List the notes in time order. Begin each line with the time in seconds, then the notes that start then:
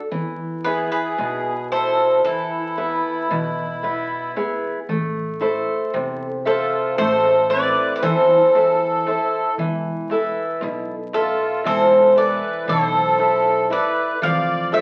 0.11 E2 E3, darbuka dum
0.39 darbuka tek
0.64 B3 E4 G#4 B4, darbuka tek
0.92 G#4 B4
1.18 B1 B2, darbuka tek
1.71 E4 A4 C5, darbuka tek
2.25 E2 E3 E4 A4, darbuka tek
2.77 B3 E4 B4
3.04 darbuka tek
3.31 B1 B2, darbuka dum
3.83 B3 E4 B4, darbuka tek
4.10 darbuka tek
4.36 B3 E4 G#4, darbuka tek
4.63 darbuka tek
4.89 A1 A3, darbuka dum
5.16 darbuka tek
5.41 E4 A4 C5, darbuka tek
5.94 E2 C3, darbuka tek
6.45 F4 A4 C5 E5, darbuka tek
6.98 A1 A3 A4 C5, darbuka tek
7.50 C4 E4 A4 B4 D5, darbuka tek
7.96 B4 D5
8.03 E2 E3 A4 C5, darbuka dum
8.55 E4 A4 C5, darbuka tek
9.07 E4 A4 C5, darbuka tek
9.58 E1 E3, darbuka dum
9.84 darbuka tek
10.10 E4 A4 B4, darbuka tek
10.61 B1 B2, darbuka tek
11.13 F4 A4 E5, darbuka tek
11.64 E1 E3 A4 C5, darbuka tek
12.16 E4 A4 B4 D5, darbuka tek
12.68 B1 B2 A4 C5, darbuka dum
13.19 E4 A4, darbuka tek
13.70 E4 A4 B4 D5, darbuka tek
14.22 F1 F3 D5 F5, darbuka dum
14.48 darbuka tek
14.72 D4 F4 A4 C5 E5, darbuka tek